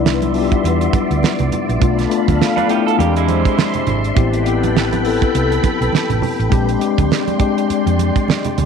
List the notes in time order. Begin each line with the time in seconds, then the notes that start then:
Already playing: C2 G3 B3 D4 D#4 E4 D5 E5 C6
0.06 snare
0.22 closed hi-hat, muted conga, high conga
0.32 G3 B3 D4 F4, open hi-hat
0.42 G4
0.52 kick, closed hi-hat
0.64 E2, closed hi-hat, muted conga
0.81 closed hi-hat
0.93 kick, closed hi-hat, high conga
1.11 D2, closed hi-hat
1.23 snare, muted conga, high conga
1.39 C2, closed hi-hat, muted conga, low conga
1.52 closed hi-hat, high conga, low conga
1.69 A#1, closed hi-hat
1.80 B1 A3 B3 D4 F4 A4 F5 B5, kick, closed hi-hat
1.99 snare, closed hi-hat
2.09 A3 B3 D4 F4, closed hi-hat
2.28 D2, kick, closed hi-hat, high conga
2.39 F5, snare, muted conga
2.57 D4 B4, closed hi-hat, muted conga, high conga
2.68 A3 B3 D4 E4 G4, closed hi-hat
2.87 A4, closed hi-hat
2.98 E2 G#3 A#3 C4 D4 G4 E5 C6, closed hi-hat
3.16 G#3 E4, closed hi-hat, muted conga
3.28 C5, closed hi-hat, high conga
3.45 kick, closed hi-hat
3.58 snare, muted conga, high conga
3.74 closed hi-hat, low conga
3.87 G#1, closed hi-hat, high conga, low conga
4.04 closed hi-hat
4.15 A1 B3 C4 E4 G4 A4 B4 G5 B5, kick, closed hi-hat
4.33 closed hi-hat, muted conga
4.45 B3 C4 E4 G4, closed hi-hat
4.63 closed hi-hat, high conga
4.76 snare, muted conga
4.93 closed hi-hat, muted conga, high conga
5.03 B3 C4 E4 A4, open hi-hat
5.22 kick, closed hi-hat
5.34 C2, closed hi-hat, muted conga
5.51 closed hi-hat, muted conga
5.63 kick, closed hi-hat, high conga
5.81 B1, closed hi-hat
5.93 muted fingered electric bass stroke, snare, high conga
6.10 A1, closed hi-hat, muted conga, low conga
6.22 open hi-hat, high conga, low conga
6.39 A1, closed hi-hat
6.50 A#1 G#3 C4 D4 G4 D5 C6, kick, closed hi-hat
6.69 closed hi-hat, muted conga
6.79 G#3 C4 D4 G4, closed hi-hat
6.98 D2, kick, closed hi-hat, high conga
7.11 snare, muted conga
7.28 closed hi-hat, high conga
7.38 G#3 C4 D4 G4, kick, closed hi-hat
7.58 closed hi-hat
7.70 muted fingered electric bass stroke, closed hi-hat
7.86 F2, closed hi-hat, muted conga
7.99 closed hi-hat, high conga
8.16 kick, closed hi-hat
8.28 snare, muted conga, high conga
8.44 closed hi-hat, muted conga, low conga
8.58 D2, closed hi-hat, high conga, low conga